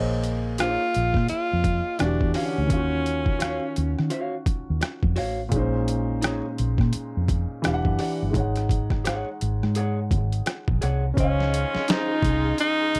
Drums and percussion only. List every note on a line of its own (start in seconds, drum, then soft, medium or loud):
0.24 closed hi-hat medium
0.58 cross-stick loud
0.58 closed hi-hat medium
0.94 closed hi-hat medium
1.14 kick medium
1.14 cross-stick soft
1.28 closed hi-hat medium
1.64 kick medium
1.64 closed hi-hat medium
1.99 cross-stick medium
1.99 closed hi-hat medium
2.21 kick medium
2.34 cross-stick soft
2.34 open hi-hat soft
2.70 kick medium
2.70 closed hi-hat medium
3.06 closed hi-hat medium
3.26 kick medium
3.40 cross-stick medium
3.40 closed hi-hat medium
3.76 closed hi-hat medium
3.99 cross-stick soft
4.10 closed hi-hat medium
4.46 kick medium
4.46 closed hi-hat medium
4.81 cross-stick loud
4.81 closed hi-hat medium
5.03 kick medium
5.16 cross-stick soft
5.16 open hi-hat soft
5.52 kick loud
5.52 closed hi-hat medium
5.88 closed hi-hat medium
6.22 cross-stick loud
6.22 closed hi-hat medium
6.58 closed hi-hat medium
6.78 kick medium
6.78 cross-stick soft
6.93 closed hi-hat medium
7.28 kick medium
7.28 closed hi-hat medium
7.64 cross-stick loud
7.64 closed hi-hat medium
7.85 kick medium
7.99 cross-stick soft
7.99 open hi-hat soft
8.34 kick loud
8.34 closed hi-hat medium
8.56 cross-stick soft
8.56 closed hi-hat soft
8.69 kick medium
8.69 closed hi-hat medium
8.90 kick medium
8.90 cross-stick soft
9.05 cross-stick medium
9.05 closed hi-hat medium
9.41 closed hi-hat medium
9.63 cross-stick soft
9.75 closed hi-hat medium
10.11 kick medium
10.11 closed hi-hat medium
10.32 closed hi-hat soft
10.46 cross-stick medium
10.46 closed hi-hat medium
10.68 kick medium
10.82 cross-stick soft
10.82 closed hi-hat medium
11.17 kick loud
11.17 closed hi-hat medium
11.40 snare soft
11.54 closed hi-hat medium
11.75 snare soft
11.88 snare loud
11.88 closed hi-hat medium
12.22 kick loud
12.22 closed hi-hat medium
12.58 closed hi-hat medium
12.95 closed hi-hat medium